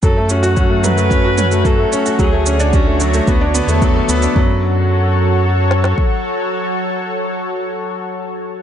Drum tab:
SH |x-xxx-xxx-xxx-xx|x-xxx-xxx-xxx-xx|----------------|----------------|
SD |----------------|----------------|----------oo----|----------------|
T2 |------o---o-----|----------------|----------------|----------------|
BD |o---o---o---o---|o---o---o---o---|o-----------o---|----------------|